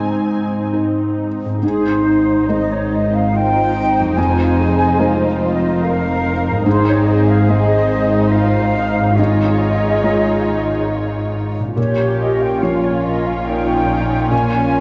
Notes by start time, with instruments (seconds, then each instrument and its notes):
Already playing: cello section G#2, harp G#2 C4 D#4 G#4, felt piano G#2 G#3, viola section C4 D#4, violin section G#5
0.73 felt piano D#4 C5
1.45 harp G#2
1.49 harp C4
1.54 harp D#4
1.58 violin section C4 D#4, harp G#4, viola section G#4
1.62 double bass section G#1, cello section G#2, felt piano G#2, flute section C5, violin section C5
2.06 viola section D#4
2.49 felt piano G#3 D#4 C5, flute section D#5
2.71 flute section C#5
2.94 flute section D#5
3.15 flute section F5
3.35 viola section F4, flute section G5
3.77 viola section D#4
4.00 harp F2
4.04 harp C4
4.09 harp D#4
4.13 harp G#4
4.17 double bass section F1, cello section F2, felt piano F2, viola section F4, flute section G#5
4.59 viola section G#4
4.99 felt piano G#3 D#4 C5, viola section F4
5.42 flute section D#5
5.83 viola section A#4, flute section F5
6.49 harp G#2
6.53 harp C4
6.58 harp D#4
6.62 cello section G#2, harp G#4, violin section C5
6.66 double bass section G#1, felt piano G#2, violin section C4 D#4, viola section G#4, flute section C5
6.89 flute section C#5
7.07 flute section D#5
7.28 flute section F5
7.49 felt piano G#3 D#4 C5, violin section C4 D#4 C5, flute section D#5
8.32 viola section F4, flute section F5
8.76 viola section D#4
9.01 harp G#2
9.05 harp C#4
9.10 harp F4
9.14 violin section D#4, harp G#4, flute section D#5
9.18 felt piano G#2, violin section F4 C#5, viola section G#4
10.04 felt piano G#3 F4 C#5
11.59 harp A#2
11.64 harp C#4
11.68 harp F4
11.77 double bass section A#1, felt piano A#2, cello section A#2, violin section C#4 F4 C#5, viola section G4, flute section C#5
12.18 flute section D#5
12.42 flute section G5
12.62 felt piano F3 F4 C#5, viola section F4, flute section F5
12.84 flute section C#5
13.05 flute section D#5
13.26 flute section F5
13.47 viola section D#4, flute section G5
14.29 felt piano A#2, viola section C#4, flute section G#5